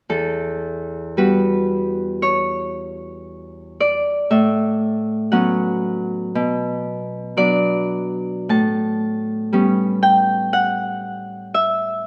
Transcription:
0.09 E2 A4
1.17 G3 B3 F#4 B4
2.22 C#5
3.80 D5
4.31 A2 E5
5.32 F#3 B3 C#4 F#5
6.35 B2
7.37 F#3 B3 D4 D5
8.49 A2 A5
9.53 G3 B3 C#4
10.03 G5
10.53 F#5
11.54 E5

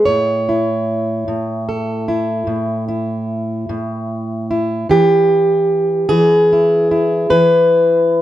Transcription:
0.05 A2 C#5
0.49 E4
1.28 A2
1.69 A4
2.08 E4
2.47 A2
2.88 E4
3.69 A2
4.51 E4
4.89 E3 G4
6.09 E3 G#4
6.53 E4
6.91 E4
7.30 E3 B4

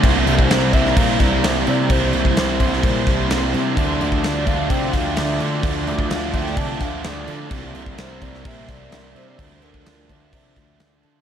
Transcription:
Already playing: C5
0.03 C2 C3 G3 A#3 C4 E4 A#5, kick, crash
0.25 C2 G3 C4, crash
0.39 kick
0.50 C2 C3 G3 A#3 C4 E4 C5, snare, crash
0.72 C2 G3 A#3 C4 E4 E5, kick, crash
0.86 snare
0.95 A#2 C3 G3 A#3 E4 F5, kick, crash
1.00 C4
1.18 C2 C4 D5, kick, snare, crash
1.23 G3
1.43 C2 C3 G3 A#3 C4 E4 C5, snare, crash
1.66 C3 G3 A#3 E4 D5, crash
1.89 C2 C3 G3 A#3 C4 E4 C5 C6, kick, crash
2.12 C2 G3 C4, crash
2.25 kick
2.36 C2 C3 G3 A#3 C4 E4 C5, snare, crash
2.59 C2 G3 A#3 C4 E4, kick, crash
2.73 snare
2.82 A#2 C3 G3 A#3 C4 E4, kick, crash
3.06 C2 G3 C4, kick, snare, crash
3.28 C2 C3 G3 A#3 E4, snare, crash
3.32 C4
3.53 C3 G3 A#3 E4, crash
3.76 D2 D3 F3 A3 D4 F4 D5, kick, crash
4.00 D2 A3 D4, crash
4.12 kick
4.23 D2 D3 F3 A3 D4 D5, snare, crash
4.45 D2 F3 A3 D4 F5, kick, crash
4.69 C3 D3 F3 A3 D4 G5, kick, crash
4.92 D2 A3 D4 F5, kick, snare, crash
5.15 D2 D3 F3 A3 D4 E5, snare, crash
5.39 D3 F3 A3 D4, crash
5.62 D2 D3 F3 A3 D4 D6, kick, crash
5.86 D2 A3 D4, crash
5.99 kick
6.08 D2 D3 F3 A3 D4, snare, crash
6.13 F5
6.32 D2 F3 A3 D4 G5, kick, crash
6.37 A3
6.46 snare
6.55 C3 D3 F3 A3 D4 A5, kick, crash
6.79 D2 A3 D4 F5, kick, snare, crash
7.02 D2 D3 F3 A3 D4 D5, snare, crash
7.27 D3 F3 A3 D4, crash
7.50 C2 C3 G3 A#3 C4 E4 A#4 E5 C6, kick, crash
7.74 C2 G3 C4, crash
7.86 kick
7.97 C2 C3 G3 A#3 C4 E4 C5, snare, crash
8.21 C2 G3 A#3 C4 E4 D5, kick, crash
8.34 snare
8.44 A#2 C3 G3 A#3 C4 E4 E5, kick, crash
8.68 C2 G3 C4 D5, kick, snare, crash
8.91 C2 C3 G3 A#3 C4 E4, snare, crash
9.15 C3 G3 A#3 E4 C5, crash
9.27 D5
9.37 D2 D3 F3 A3 D4 F4 C5, kick, crash
9.62 D2 A3 D4 A#4, crash
9.74 kick
9.85 D2 D3 F3 A3 D4, snare, crash
10.08 D2 F3 A3 D4 D5, kick, crash
10.31 C3 D3 F3 A3 D4 E5, kick, crash
10.55 D2 A3 D4, kick, snare, crash
10.78 D2 D3 F3 A3 D4, snare, crash
11.02 D3 F3 A3 D4, crash

